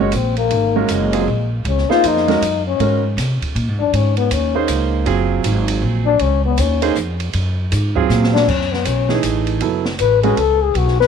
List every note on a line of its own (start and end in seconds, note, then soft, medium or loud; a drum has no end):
0.00 0.12 F#1 medium
0.00 0.12 G#3 medium
0.00 0.16 G#3 medium
0.00 0.12 C#4 medium
0.00 0.12 F#4 medium
0.00 0.12 C#5 medium
0.12 0.50 A#1 medium
0.12 0.37 C4 loud
0.12 hi-hat pedal medium
0.12 ride medium
0.36 0.94 A#3 loud
0.36 ride soft
0.50 0.88 G#1 medium
0.50 ride medium
0.76 1.11 G#3 medium
0.76 1.11 C#4 medium
0.76 1.11 F#4 medium
0.76 1.11 A#4 medium
0.88 1.26 F#1 medium
0.88 1.53 G#3 medium
0.88 hi-hat pedal medium
0.88 ride medium
1.13 1.26 F#3 medium
1.13 1.26 C4 medium
1.13 1.26 F4 medium
1.13 1.26 G#4 medium
1.13 ride medium
1.28 1.64 A#1 medium
1.65 1.87 C#2 medium
1.65 1.92 C#4 loud
1.65 ride medium
1.78 snare soft
1.90 2.25 A#3 medium
1.90 2.25 D#4 medium
1.90 2.09 F4 loud
1.90 2.25 G#4 medium
1.90 2.26 C5 medium
1.90 muted upright bass stroke soft
1.90 snare medium
2.04 2.40 F2 medium
2.04 2.66 D#4 loud
2.04 hi-hat pedal medium
2.04 ride medium
2.17 snare soft
2.28 2.40 G#3 medium
2.28 2.40 C#4 medium
2.28 2.41 F#4 medium
2.28 2.41 A#4 medium
2.28 snare soft
2.28 ride soft
2.41 2.78 F#2 medium
2.41 hi-hat pedal medium
2.41 ride medium
2.67 3.14 C#4 medium
2.79 3.16 G#2 medium
2.79 3.01 G#3 medium
2.79 3.01 C#4 soft
2.79 3.01 F#4 soft
2.79 3.02 A#4 medium
2.79 ride medium
3.17 3.39 C3 medium
3.17 snare soft
3.17 hi-hat pedal medium
3.17 ride medium
3.42 muted upright bass stroke soft
3.42 kick medium
3.42 ride medium
3.55 3.68 A#2 medium
3.55 ride medium
3.68 3.80 G#2 medium
3.80 3.92 F#2 medium
3.80 3.96 D4 loud
3.93 4.30 G#2 medium
3.93 4.17 C#4 medium
3.93 ride medium
4.17 4.34 B3 loud
4.17 ride medium
4.31 4.68 D#2 medium
4.31 4.70 C#4 medium
4.31 hi-hat pedal medium
4.31 ride medium
4.55 5.04 A#3 medium
4.55 5.04 D#4 medium
4.55 5.04 G#4 medium
4.55 5.04 C5 medium
4.68 5.05 C#2 medium
4.68 hi-hat pedal medium
4.68 ride medium
5.06 5.43 F#1 medium
5.06 6.12 F#3 medium
5.06 6.12 C4 medium
5.06 6.12 F4 medium
5.06 6.12 G#4 medium
5.06 ride medium
5.44 5.81 G#1 medium
5.44 hi-hat pedal medium
5.44 ride medium
5.68 ride medium
5.82 6.19 A#1 medium
6.06 6.23 D4 loud
6.19 6.57 C#2 medium
6.19 6.45 C#4 loud
6.19 ride medium
6.46 6.62 B3 loud
6.58 6.95 D#2 medium
6.58 6.97 C#4 medium
6.58 hi-hat pedal medium
6.58 ride medium
6.82 6.95 A#3 medium
6.82 6.95 D#4 medium
6.82 6.95 G#4 medium
6.82 6.95 C5 medium
6.82 ride medium
6.95 7.33 F2 medium
6.95 hi-hat pedal medium
7.20 ride medium
7.33 7.71 F#2 medium
7.33 ride medium
7.72 8.09 G#2 loud
7.72 hi-hat pedal medium
7.72 ride medium
7.95 8.45 F#3 medium
7.95 8.45 C4 medium
7.95 8.45 F4 medium
7.95 8.45 G#4 medium
7.95 kick medium
8.09 8.46 A#2 medium
8.09 snare medium
8.09 hi-hat pedal medium
8.24 snare medium
8.33 8.50 D4 loud
8.33 snare loud
8.48 8.84 F#2 medium
8.48 8.74 C#4 medium
8.48 kick medium
8.48 crash medium
8.61 snare soft
8.72 8.87 B3 medium
8.72 snare soft
8.85 9.22 B1 medium
8.85 9.24 C#4 medium
8.85 hi-hat pedal medium
8.85 ride medium
9.09 9.58 E3 medium
9.09 9.58 A3 medium
9.09 9.59 D#4 medium
9.09 9.59 G#4 medium
9.09 snare medium
9.23 9.60 A1 medium
9.23 hi-hat pedal medium
9.23 ride medium
9.47 ride medium
9.61 9.99 F#1 medium
9.61 9.83 F#3 medium
9.61 9.83 B3 medium
9.61 9.84 E4 medium
9.61 9.84 A4 medium
9.61 ride medium
9.85 snare medium
9.99 10.36 A1 medium
9.99 10.22 B4 medium
9.99 hi-hat pedal medium
9.99 ride medium
10.23 10.36 G#3 medium
10.23 10.36 C#4 medium
10.23 10.36 F#4 medium
10.23 10.40 G#4 loud
10.23 10.37 B4 medium
10.23 ride soft
10.37 10.74 C#2 medium
10.37 10.64 A4 loud
10.37 ride medium
10.62 10.79 G#4 loud
10.74 11.07 B1 medium
10.74 11.00 F#4 medium
10.74 ride medium
10.88 snare soft
11.00 11.07 B4 loud
11.00 snare soft